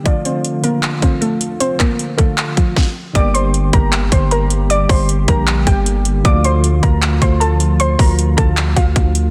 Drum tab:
HH |xxxxxxxx|xxxxxx--|xxxxxxxx|xoxxxxxx|
CP |----x---|-x--x---|----x---|----x---|
SD |--------|------o-|--------|--------|
BD |o----o--|-o-o-oo-|o--o-o--|-o-o-o--|

HH |xxxxxxxx|xoxxxxxx|
CP |----x---|----x---|
SD |--------|--------|
BD |o--o-o--|-o-o-oo-|